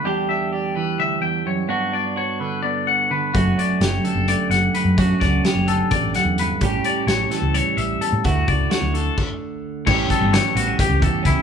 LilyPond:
<<
  \new Staff \with { instrumentName = "Clean electric guitar" } { \time 7/8 \key d \major \tempo 4 = 129 g'8 e''8 d''8 b'8 e''8 g''8 cis''8 | fis'8 d''8 cis''8 b'8 d''8 fis''8 b'8 | fis'8 d''8 cis''8 a'8 d''8 fis''8 b'8 | fis'8 d''8 cis''8 a'8 d''8 fis''8 b'8 |
g'8 d''8 cis''8 a'8 cis''8 e''8 a'8 | fis'8 d''8 cis''8 a'8 r4. | cis''8 a'8 cis''8 fis'8 g'8 a'8 e'8 | }
  \new Staff \with { instrumentName = "Clean electric guitar" } { \time 7/8 \key d \major << { <g d' g'>8 d'8 g'2~ g'8 | <b d' fis'>8 d'8 fis'4 b4. | <a cis' fis'>8 cis'8 g'4 a4. | <a cis' fis'>8 cis'8 g'2~ g'8 |
<g cis' g'>8 cis'8 g'4 g4. | <a e' fis'>8 e'8 fis'4 r4. | <e g cis' g'>8 g'4 b16 cis'16 g'4 cis'8 | } \\ { <e, d>4. e8 d,8 e,8 fis,8 | g,4. d4. d8 | fis,4. d4. fis,8 | fis,4. d8 e,8 fis,8 g,8 |
a,4. e4. e,8 | d,4. d2 | a,4 e4. e,4 | } >> }
  \new Staff \with { instrumentName = "Fingered electric bass" } { \clef bass \time 7/8 \key d \major r2. r8 | r2. r8 | fis,,8 r8 fis,,8 r16 fis,,8 r16 fis,,8 r16 fis,16~ | fis,8 cis,8 r16 fis,,8. a,,8. e,8. |
a,,8 r8 a,,8 r16 cis,8 r16 a,,8 r16 a,16 | d,8 cis,8 r16 d,8. r4. | a,,8 r16 g,,8 r16 a,,8 r16 cis,8 r16 cis,16 r16 | }
  \new DrumStaff \with { instrumentName = "Drums" } \drummode { \time 7/8 r4 r4 r4. | r4 r4 r4. | <hh bd>8 hh8 <hh sn>8 hh8 hh8 <hh sn>8 hh8 | <hh bd>8 <hh bd sn>8 <hh sn>8 hh8 <hh bd>8 <hh sn>8 hh8 |
<hh bd>8 hh8 <hh sn>8 <hh sn>8 hh8 hh8 hh8 | <hh bd>8 <hh bd>8 <hh sn>8 hh8 <cymc bd>4. | <cymc bd>8 <hh bd sn>8 <hh sn>8 hh8 <hh bd sn>8 <hh bd>8 <hh bd sn>8 | }
>>